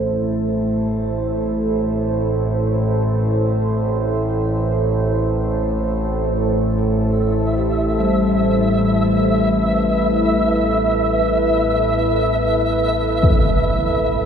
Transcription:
Already playing: synth drone A1 A2, bronze metallophone A3, ambient pad E4 A4 C5
6.79 bronze metallophone A4
6.94 synth texture E5
7.58 bronze metallophone G4
8.00 bronze metallophone G3
8.63 ambient pad B4
13.23 impact

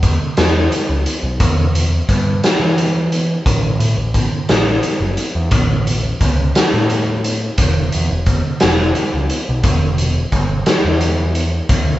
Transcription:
Already playing: picked electric bass E2
0.03 kick, closed hi-hat
0.37 picked electric bass E2, snare, closed hi-hat
0.72 closed hi-hat
0.89 picked electric bass C#2
1.06 closed hi-hat
1.23 picked electric bass B1
1.40 picked electric bass E2, kick, closed hi-hat
1.75 closed hi-hat
2.09 picked electric bass G2, kick, closed hi-hat
2.44 snare, closed hi-hat
2.60 picked electric bass E3
2.78 closed hi-hat
3.12 closed hi-hat
3.45 picked electric bass A1, kick, closed hi-hat
3.79 picked electric bass A2, closed hi-hat
3.97 picked electric bass A1
4.14 kick, closed hi-hat
4.49 picked electric bass A1, snare, closed hi-hat
4.83 closed hi-hat
5.00 picked electric bass F#1
5.17 closed hi-hat
5.35 picked electric bass E2
5.51 picked electric bass A1, kick, closed hi-hat
5.87 closed hi-hat
6.20 picked electric bass C#2, kick, closed hi-hat
6.55 snare, closed hi-hat
6.74 picked electric bass A2
6.90 closed hi-hat
7.24 closed hi-hat
7.57 picked electric bass E1, kick, closed hi-hat
7.92 picked electric bass E2, closed hi-hat
8.11 picked electric bass E1
8.26 kick, closed hi-hat
8.60 picked electric bass E1, snare, closed hi-hat
8.95 closed hi-hat
9.14 picked electric bass C#2
9.30 closed hi-hat
9.49 picked electric bass B1
9.63 picked electric bass E1, kick, closed hi-hat
9.98 closed hi-hat
10.32 picked electric bass G1, kick, closed hi-hat
10.66 snare, closed hi-hat
10.84 picked electric bass E2
11.01 closed hi-hat
11.35 closed hi-hat
11.69 picked electric bass D2, kick, closed hi-hat

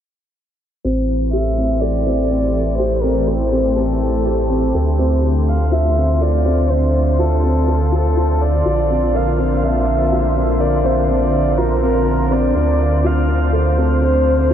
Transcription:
0.84 sub bass A1, analog synth pad E3, felt piano C4
1.13 analog synth pad A3
1.18 analog synth pad C5
1.32 felt piano G4, violin E5
1.40 analog synth pad G4
1.58 felt piano C4
1.80 felt piano A4, violin D5
2.07 felt piano C4
2.31 felt piano C4
2.78 felt piano G4, violin C5
3.02 felt piano C4, violin A#4
3.28 felt piano A4, violin C5
3.52 felt piano C4
3.76 felt piano C4, violin A4
4.26 felt piano G4
4.50 felt piano C4
4.74 sub bass D2, analog synth pad D3, felt piano A4
4.99 felt piano C4
5.23 felt piano C4
5.49 analog synth pad F4, violin F5
5.72 felt piano F4, violin E5
5.97 felt piano C4
6.21 felt piano A4, violin D5
6.46 felt piano C4
6.70 felt piano C4, violin C5
7.19 felt piano F4, violin A4
7.43 felt piano C4
7.68 felt piano A4
7.92 felt piano F4, violin A4
8.17 felt piano F4
8.42 violin D5
8.65 sub bass A#1, felt piano F4
8.81 analog synth pad A#3
8.90 felt piano C4
9.14 felt piano A#4, violin F5
9.39 felt piano C4
9.63 felt piano C4, violin E5
10.12 felt piano F4
10.36 felt piano C4
10.60 felt piano A#4, violin D5
10.84 felt piano C4, violin C5
11.08 felt piano C4, violin D5
11.58 felt piano F4, violin A#4
11.82 felt piano C4, violin A#4
12.07 felt piano A#4
12.31 felt piano C4, violin D5
12.55 sub bass D2, felt piano C4
12.96 analog synth pad A3
13.04 felt piano F4, violin F5
13.28 felt piano C4
13.53 felt piano A4, violin C5
13.78 felt piano C4
14.02 felt piano C4
14.50 felt piano F4

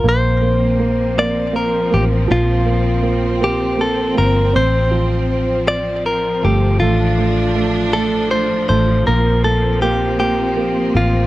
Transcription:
0.04 fingered electric bass A#1, string section F3 A#3 C4, upright piano A#3
0.09 clean electric guitar C5
0.41 upright piano A#3
0.79 upright piano A#3
1.18 upright piano A#3, clean electric guitar D5
1.53 upright piano A#3, clean electric guitar A#4
1.90 fingered electric bass A1, upright piano A#3, clean electric guitar G4
2.28 fingered electric bass A#1, upright piano F3, clean electric guitar F4
2.66 upright piano A#3
3.02 upright piano A#3
3.41 upright piano A#3, clean electric guitar G4
3.77 upright piano A#3, clean electric guitar A4
4.15 fingered electric bass G1, upright piano A#3, clean electric guitar A#4
4.53 fingered electric bass A1, string section F3, upright piano C4, clean electric guitar C5
4.91 upright piano F3
5.68 clean electric guitar D5
6.06 clean electric guitar A#4
6.43 fingered electric bass G1, upright piano A3, clean electric guitar G4
6.80 fingered electric bass A1, upright piano A3, string section D4, clean electric guitar F4
7.18 upright piano A3
7.55 upright piano A3
7.93 upright piano A3, clean electric guitar A4
8.31 upright piano A3, clean electric guitar C5
8.69 fingered electric bass A1, upright piano A3, clean electric guitar C5
9.07 fingered electric bass A#1, upright piano A#3, string section A#3 C4, clean electric guitar A#4
9.44 upright piano A#3, clean electric guitar A4
9.82 upright piano A#3, clean electric guitar G4
10.20 upright piano A#3, clean electric guitar G4
10.57 upright piano A#3
10.95 fingered electric bass A1, upright piano A#3, clean electric guitar F4

